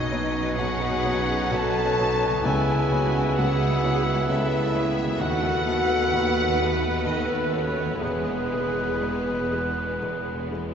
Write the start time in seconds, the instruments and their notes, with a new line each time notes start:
Already playing: felt piano B1 B2, double bass section B1, harp B2 C#4 D#4 B4, cello section B2, violin section C#4 D#4 D#5, french horn section D#4, clarinet B4, oboe C#5, flute D#5
0.11 felt piano B3 D#4 C#5
0.58 felt piano B1 B2, french horn section F#4, viola section G#4, violin section F#5, flute F#5
1.04 felt piano B3 D#4 C#5
1.51 felt piano B1 B2, viola section F#4, french horn section A4, flute A5, violin section A5
1.99 felt piano B3 D#4 C#5, viola section D#4
2.29 harp C#3
2.33 harp C#4
2.37 harp E4
2.42 felt piano C#2 C#3, double bass section C#2, timpani C#3, violin section B3 E4 G#5, viola section E4, harp B4, oboe E5, flute G#5
2.46 cello section C#2, french horn section G#4
2.92 felt piano B3 E4 C#5, viola section F#4
3.37 felt piano C#2 C#3, french horn section F#4, viola section G#4, violin section F#5, flute F#5
3.83 felt piano B3 E4 C#5
4.28 felt piano C#2 C#3, french horn section E4, viola section A4, flute E5, violin section E5
4.74 felt piano B3 E4 C#5, viola section G#4
5.03 harp D#3
5.07 harp A3
5.12 harp F#4
5.16 felt piano D#2, violin section A3 B3, harp B4, oboe B4, flute F#5
5.20 cello section D#2, double bass section D#2, felt piano D#3, french horn section F#4, viola section F#4, clarinet A4, violin section F#5
5.67 felt piano B3 F#4 A4, viola section B4
6.13 felt piano D#2 D#3
6.59 felt piano B3 F#4 A4
7.04 felt piano D#2 D#3, french horn section D#4, clarinet A4, oboe B4, flute D#5, violin section D#5
7.29 french horn section B3, violin section B4, flute B4
7.52 felt piano B3 F#4 A4, french horn section C#4, flute C#5, violin section C#5
7.85 harp E3
7.90 harp G#3
7.94 harp E4
7.99 felt piano E1 E2, cello section E2, violin section G#3 B4, french horn section B3, clarinet G#4, viola section G#4, harp B4, flute B4
8.03 double bass section E1, oboe B4
8.52 felt piano B3 E4 G#4
9.01 felt piano E1 E2
9.52 felt piano B3 E4 G#4
10.02 felt piano E1 E2
10.51 felt piano B3 E4 G#4